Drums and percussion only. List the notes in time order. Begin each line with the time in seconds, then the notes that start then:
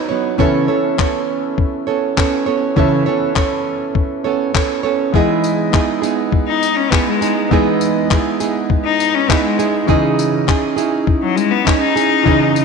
0.39 kick
0.99 kick, clap
1.58 kick
2.18 kick, clap
2.77 kick
3.36 kick, clap
3.95 kick
4.55 kick, clap
5.14 kick
5.44 tambourine
5.73 kick, clap
6.03 tambourine
6.32 kick
6.63 tambourine
6.92 kick, clap
7.22 tambourine
7.51 kick
7.81 tambourine
8.11 kick, clap
8.40 tambourine
8.70 kick
9.00 tambourine
9.30 kick, clap
9.59 tambourine
9.89 kick
10.19 tambourine
10.48 kick, clap
10.78 tambourine
11.07 kick
11.37 tambourine
11.67 kick, clap
11.97 tambourine
12.26 kick
12.56 tambourine